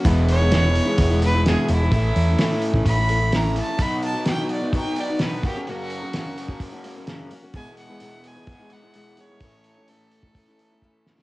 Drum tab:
HH |o-o-o-o-o-o-o-o-|o-o-o-o-o-o-o-o-|o-o-o-o-o-o-o-o-|o-o-o-o-o-o-o-o-|
SD |----o-------o---|----o-------o---|----o-------o---|----o-------o---|
BD |o-------o-------|o------oo-------|o-------o-----o-|-------oo-------|

HH |o-o-o-o-o-o-o-o-|o-o-o-o-o-o-----|
SD |----------------|--------------oo|
BD |o-------o-------|o------oo---o---|